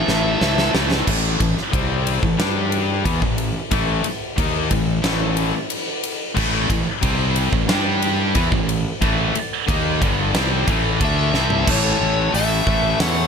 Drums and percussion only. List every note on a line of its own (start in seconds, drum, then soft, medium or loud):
0.09 snare medium
0.41 snare medium
0.58 snare medium
0.75 snare loud
0.91 snare medium
1.07 kick loud
1.07 crash loud
1.40 kick loud
1.40 ride medium
1.58 snare soft
1.73 kick loud
1.73 ride loud
2.07 ride medium
2.23 kick medium
2.40 snare loud
2.40 ride loud
2.72 ride medium
3.05 kick loud
3.05 ride loud
3.22 kick loud
3.38 ride medium
3.71 kick loud
3.71 ride loud
4.04 ride medium
4.38 kick loud
4.38 ride loud
4.71 kick loud
4.71 ride medium
5.04 snare loud
5.04 ride loud
5.37 ride medium
5.70 ride loud
6.03 ride medium
6.37 kick loud
6.37 crash loud
6.70 kick loud
6.70 ride medium
7.03 kick loud
7.03 ride loud
7.36 ride medium
7.53 kick loud
7.69 snare loud
7.69 ride loud
8.02 ride medium
8.35 kick loud
8.35 ride loud
8.52 kick loud
8.69 ride medium
9.02 kick loud
9.02 ride medium
9.35 ride medium
9.69 kick loud
9.69 ride loud
10.02 kick loud
10.02 ride medium
10.35 snare loud
10.35 ride loud
10.68 kick loud
10.68 ride medium
11.01 kick loud
11.01 ride loud
11.34 snare medium
11.50 floor tom medium
11.67 kick loud
11.67 crash loud
12.34 open hi-hat medium
12.67 kick medium
13.00 snare loud
13.00 open hi-hat medium